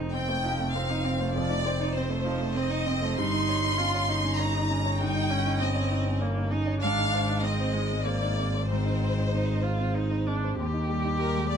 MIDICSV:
0, 0, Header, 1, 5, 480
1, 0, Start_track
1, 0, Key_signature, -3, "major"
1, 0, Tempo, 607287
1, 1069, Time_signature, 3, 2, 24, 8
1, 5389, Tempo, 623053
1, 9050, End_track
2, 0, Start_track
2, 0, Title_t, "Violin section"
2, 0, Program_c, 0, 48
2, 100, Note_on_c, 0, 79, 105
2, 553, Note_off_c, 0, 79, 0
2, 591, Note_on_c, 0, 77, 91
2, 1069, Note_off_c, 0, 77, 0
2, 1073, Note_on_c, 0, 74, 117
2, 1538, Note_off_c, 0, 74, 0
2, 1543, Note_on_c, 0, 72, 90
2, 2022, Note_off_c, 0, 72, 0
2, 2028, Note_on_c, 0, 75, 99
2, 2515, Note_off_c, 0, 75, 0
2, 2515, Note_on_c, 0, 84, 127
2, 3454, Note_off_c, 0, 84, 0
2, 3470, Note_on_c, 0, 82, 109
2, 3947, Note_on_c, 0, 79, 120
2, 3949, Note_off_c, 0, 82, 0
2, 4429, Note_off_c, 0, 79, 0
2, 4431, Note_on_c, 0, 75, 92
2, 4910, Note_off_c, 0, 75, 0
2, 5387, Note_on_c, 0, 77, 124
2, 5831, Note_off_c, 0, 77, 0
2, 5859, Note_on_c, 0, 75, 95
2, 6335, Note_on_c, 0, 74, 89
2, 6337, Note_off_c, 0, 75, 0
2, 6818, Note_on_c, 0, 72, 93
2, 6822, Note_off_c, 0, 74, 0
2, 8015, Note_off_c, 0, 72, 0
2, 8751, Note_on_c, 0, 70, 94
2, 8972, Note_off_c, 0, 70, 0
2, 8990, Note_on_c, 0, 74, 91
2, 9050, Note_off_c, 0, 74, 0
2, 9050, End_track
3, 0, Start_track
3, 0, Title_t, "Upright piano"
3, 0, Program_c, 1, 0
3, 0, Control_c, 1, 64, 127
3, 0, Note_on_c, 1, 41, 69
3, 0, Note_on_c, 1, 63, 51
3, 0, Note_on_c, 1, 72, 57
3, 107, Note_on_c, 1, 60, 62
3, 183, Note_off_c, 1, 63, 0
3, 227, Note_off_c, 1, 72, 0
3, 227, Note_on_c, 1, 72, 49
3, 301, Note_off_c, 1, 60, 0
3, 345, Note_on_c, 1, 63, 56
3, 420, Note_off_c, 1, 72, 0
3, 475, Note_on_c, 1, 60, 62
3, 539, Note_off_c, 1, 63, 0
3, 596, Note_on_c, 1, 72, 65
3, 664, Note_off_c, 1, 60, 0
3, 714, Note_on_c, 1, 63, 58
3, 784, Note_off_c, 1, 72, 0
3, 828, Note_on_c, 1, 60, 61
3, 903, Note_off_c, 1, 63, 0
3, 950, Note_on_c, 1, 72, 60
3, 1020, Note_off_c, 1, 60, 0
3, 1038, Note_off_c, 1, 41, 0
3, 1074, Note_on_c, 1, 41, 70
3, 1084, Control_c, 1, 64, 0
3, 1141, Note_off_c, 1, 72, 0
3, 1182, Note_on_c, 1, 63, 58
3, 1203, Control_c, 1, 64, 127
3, 1310, Note_on_c, 1, 72, 61
3, 1375, Note_off_c, 1, 63, 0
3, 1425, Note_on_c, 1, 63, 58
3, 1499, Note_off_c, 1, 72, 0
3, 1549, Note_on_c, 1, 60, 68
3, 1616, Note_off_c, 1, 63, 0
3, 1666, Note_on_c, 1, 72, 65
3, 1737, Note_off_c, 1, 60, 0
3, 1787, Note_on_c, 1, 63, 63
3, 1856, Note_off_c, 1, 72, 0
3, 1905, Note_on_c, 1, 60, 62
3, 1977, Note_off_c, 1, 63, 0
3, 2031, Note_on_c, 1, 72, 65
3, 2097, Note_off_c, 1, 60, 0
3, 2148, Note_on_c, 1, 63, 58
3, 2222, Note_off_c, 1, 72, 0
3, 2273, Note_on_c, 1, 60, 64
3, 2342, Note_off_c, 1, 63, 0
3, 2395, Note_on_c, 1, 72, 62
3, 2466, Note_off_c, 1, 60, 0
3, 2483, Note_off_c, 1, 41, 0
3, 2509, Note_on_c, 1, 43, 80
3, 2515, Note_off_c, 1, 72, 0
3, 2529, Control_c, 1, 64, 0
3, 2633, Note_on_c, 1, 63, 63
3, 2666, Control_c, 1, 64, 127
3, 2757, Note_on_c, 1, 73, 68
3, 2826, Note_off_c, 1, 63, 0
3, 2876, Note_on_c, 1, 63, 63
3, 2948, Note_off_c, 1, 73, 0
3, 2999, Note_on_c, 1, 61, 64
3, 3067, Note_off_c, 1, 63, 0
3, 3119, Note_on_c, 1, 73, 64
3, 3188, Note_off_c, 1, 61, 0
3, 3231, Note_on_c, 1, 63, 62
3, 3308, Note_off_c, 1, 73, 0
3, 3351, Note_on_c, 1, 61, 69
3, 3423, Note_off_c, 1, 63, 0
3, 3470, Note_on_c, 1, 73, 65
3, 3543, Note_off_c, 1, 61, 0
3, 3595, Note_on_c, 1, 63, 61
3, 3662, Note_off_c, 1, 73, 0
3, 3716, Note_on_c, 1, 61, 65
3, 3784, Note_off_c, 1, 63, 0
3, 3838, Note_on_c, 1, 73, 59
3, 3905, Note_off_c, 1, 61, 0
3, 3917, Note_off_c, 1, 43, 0
3, 3955, Note_on_c, 1, 43, 72
3, 3966, Control_c, 1, 64, 0
3, 4026, Note_off_c, 1, 73, 0
3, 4075, Note_on_c, 1, 63, 61
3, 4097, Control_c, 1, 64, 127
3, 4190, Note_on_c, 1, 73, 60
3, 4265, Note_off_c, 1, 63, 0
3, 4315, Note_on_c, 1, 63, 65
3, 4383, Note_off_c, 1, 73, 0
3, 4436, Note_on_c, 1, 61, 65
3, 4505, Note_off_c, 1, 63, 0
3, 4549, Note_on_c, 1, 73, 62
3, 4625, Note_off_c, 1, 61, 0
3, 4671, Note_on_c, 1, 63, 62
3, 4742, Note_off_c, 1, 73, 0
3, 4796, Note_on_c, 1, 61, 61
3, 4862, Note_off_c, 1, 63, 0
3, 4913, Note_on_c, 1, 73, 66
3, 4984, Note_off_c, 1, 61, 0
3, 5035, Note_on_c, 1, 63, 56
3, 5103, Note_off_c, 1, 73, 0
3, 5148, Note_on_c, 1, 61, 59
3, 5224, Note_off_c, 1, 63, 0
3, 5271, Note_on_c, 1, 73, 56
3, 5342, Note_off_c, 1, 61, 0
3, 5361, Note_off_c, 1, 43, 0
3, 5391, Note_off_c, 1, 73, 0
3, 5394, Note_on_c, 1, 44, 74
3, 5406, Control_c, 1, 64, 0
3, 5515, Note_on_c, 1, 63, 60
3, 5556, Control_c, 1, 64, 127
3, 5634, Note_on_c, 1, 72, 58
3, 5701, Note_off_c, 1, 63, 0
3, 5750, Note_on_c, 1, 63, 58
3, 5819, Note_off_c, 1, 72, 0
3, 5869, Note_on_c, 1, 60, 63
3, 5937, Note_off_c, 1, 63, 0
3, 5989, Note_on_c, 1, 72, 53
3, 6056, Note_off_c, 1, 60, 0
3, 6103, Note_on_c, 1, 63, 49
3, 6175, Note_off_c, 1, 72, 0
3, 6227, Note_on_c, 1, 60, 50
3, 6293, Note_off_c, 1, 63, 0
3, 6351, Note_on_c, 1, 72, 55
3, 6415, Note_off_c, 1, 60, 0
3, 6473, Note_on_c, 1, 63, 50
3, 6538, Note_off_c, 1, 72, 0
3, 6594, Note_on_c, 1, 60, 50
3, 6660, Note_off_c, 1, 63, 0
3, 6718, Note_on_c, 1, 72, 51
3, 6782, Note_off_c, 1, 60, 0
3, 6795, Note_off_c, 1, 44, 0
3, 6837, Control_c, 1, 64, 0
3, 6841, Note_on_c, 1, 44, 66
3, 6906, Note_off_c, 1, 72, 0
3, 6958, Note_on_c, 1, 63, 51
3, 6968, Control_c, 1, 64, 127
3, 7077, Note_on_c, 1, 72, 52
3, 7148, Note_off_c, 1, 63, 0
3, 7204, Note_on_c, 1, 63, 52
3, 7268, Note_off_c, 1, 72, 0
3, 7322, Note_on_c, 1, 60, 53
3, 7393, Note_off_c, 1, 63, 0
3, 7439, Note_on_c, 1, 72, 48
3, 7512, Note_off_c, 1, 60, 0
3, 7558, Note_on_c, 1, 63, 48
3, 7631, Note_off_c, 1, 72, 0
3, 7677, Note_on_c, 1, 60, 51
3, 7751, Note_off_c, 1, 63, 0
3, 7802, Note_on_c, 1, 72, 55
3, 7872, Note_off_c, 1, 60, 0
3, 7924, Note_on_c, 1, 63, 51
3, 7995, Note_off_c, 1, 72, 0
3, 8051, Note_on_c, 1, 60, 54
3, 8117, Note_off_c, 1, 63, 0
3, 8173, Note_on_c, 1, 72, 47
3, 8240, Note_off_c, 1, 60, 0
3, 8261, Note_off_c, 1, 44, 0
3, 8288, Note_off_c, 1, 72, 0
3, 8293, Note_on_c, 1, 39, 65
3, 8299, Control_c, 1, 64, 0
3, 8405, Note_on_c, 1, 63, 57
3, 8406, Control_c, 1, 64, 127
3, 8523, Note_on_c, 1, 55, 59
3, 8593, Note_off_c, 1, 63, 0
3, 8643, Note_on_c, 1, 63, 56
3, 8711, Note_off_c, 1, 55, 0
3, 8756, Note_on_c, 1, 55, 61
3, 8829, Note_off_c, 1, 63, 0
3, 8879, Note_on_c, 1, 56, 44
3, 8944, Note_off_c, 1, 55, 0
3, 8988, Note_on_c, 1, 55, 55
3, 8994, Note_off_c, 1, 56, 0
3, 9050, Note_off_c, 1, 39, 0
3, 9050, Note_off_c, 1, 55, 0
3, 9050, End_track
4, 0, Start_track
4, 0, Title_t, "Viola"
4, 0, Program_c, 2, 41
4, 0, Note_on_c, 2, 63, 59
4, 108, Note_on_c, 2, 60, 69
4, 120, Note_off_c, 2, 63, 0
4, 227, Note_on_c, 2, 57, 62
4, 239, Note_off_c, 2, 60, 0
4, 345, Note_on_c, 2, 53, 65
4, 357, Note_off_c, 2, 57, 0
4, 469, Note_on_c, 2, 57, 65
4, 480, Note_off_c, 2, 53, 0
4, 591, Note_on_c, 2, 60, 69
4, 603, Note_off_c, 2, 57, 0
4, 710, Note_on_c, 2, 63, 69
4, 722, Note_off_c, 2, 60, 0
4, 829, Note_on_c, 2, 60, 63
4, 841, Note_off_c, 2, 63, 0
4, 948, Note_on_c, 2, 57, 64
4, 960, Note_off_c, 2, 60, 0
4, 1060, Note_off_c, 2, 57, 0
4, 1065, Note_on_c, 2, 53, 72
4, 1186, Note_on_c, 2, 57, 68
4, 1197, Note_off_c, 2, 53, 0
4, 1302, Note_on_c, 2, 60, 68
4, 1314, Note_off_c, 2, 57, 0
4, 1426, Note_on_c, 2, 63, 68
4, 1438, Note_off_c, 2, 60, 0
4, 1544, Note_on_c, 2, 60, 69
4, 1556, Note_off_c, 2, 63, 0
4, 1657, Note_on_c, 2, 57, 66
4, 1669, Note_off_c, 2, 60, 0
4, 1774, Note_on_c, 2, 53, 67
4, 1786, Note_off_c, 2, 57, 0
4, 1895, Note_on_c, 2, 57, 71
4, 1907, Note_off_c, 2, 53, 0
4, 2017, Note_on_c, 2, 60, 77
4, 2029, Note_off_c, 2, 57, 0
4, 2137, Note_on_c, 2, 63, 70
4, 2149, Note_off_c, 2, 60, 0
4, 2262, Note_on_c, 2, 60, 73
4, 2274, Note_off_c, 2, 63, 0
4, 2387, Note_on_c, 2, 57, 79
4, 2399, Note_off_c, 2, 60, 0
4, 2511, Note_off_c, 2, 57, 0
4, 2518, Note_on_c, 2, 63, 81
4, 2987, Note_on_c, 2, 65, 87
4, 2999, Note_off_c, 2, 63, 0
4, 3234, Note_on_c, 2, 63, 75
4, 3246, Note_off_c, 2, 65, 0
4, 3942, Note_off_c, 2, 63, 0
4, 3946, Note_on_c, 2, 63, 73
4, 4191, Note_on_c, 2, 61, 82
4, 4203, Note_off_c, 2, 63, 0
4, 4427, Note_on_c, 2, 60, 77
4, 4439, Note_off_c, 2, 61, 0
4, 4906, Note_on_c, 2, 58, 78
4, 4918, Note_off_c, 2, 60, 0
4, 5144, Note_on_c, 2, 63, 83
4, 5155, Note_off_c, 2, 58, 0
4, 5375, Note_off_c, 2, 63, 0
4, 5380, Note_on_c, 2, 62, 73
4, 5858, Note_on_c, 2, 60, 78
4, 5869, Note_off_c, 2, 62, 0
4, 6096, Note_on_c, 2, 56, 68
4, 6108, Note_off_c, 2, 60, 0
4, 6333, Note_on_c, 2, 58, 67
4, 6345, Note_off_c, 2, 56, 0
4, 6811, Note_off_c, 2, 58, 0
4, 6816, Note_on_c, 2, 60, 59
4, 7251, Note_off_c, 2, 60, 0
4, 7310, Note_on_c, 2, 63, 69
4, 7553, Note_on_c, 2, 65, 70
4, 7565, Note_off_c, 2, 63, 0
4, 7801, Note_on_c, 2, 63, 73
4, 7813, Note_off_c, 2, 65, 0
4, 8046, Note_on_c, 2, 62, 67
4, 8057, Note_off_c, 2, 63, 0
4, 8278, Note_off_c, 2, 62, 0
4, 8283, Note_on_c, 2, 67, 87
4, 9050, Note_off_c, 2, 67, 0
4, 9050, End_track
5, 0, Start_track
5, 0, Title_t, "Double bass"
5, 0, Program_c, 3, 43
5, 0, Note_on_c, 3, 29, 75
5, 2514, Note_on_c, 3, 31, 90
5, 2526, Note_off_c, 3, 29, 0
5, 5390, Note_on_c, 3, 32, 82
5, 5402, Note_off_c, 3, 31, 0
5, 8280, Note_off_c, 3, 32, 0
5, 8285, Note_on_c, 3, 39, 85
5, 9050, Note_off_c, 3, 39, 0
5, 9050, End_track
0, 0, End_of_file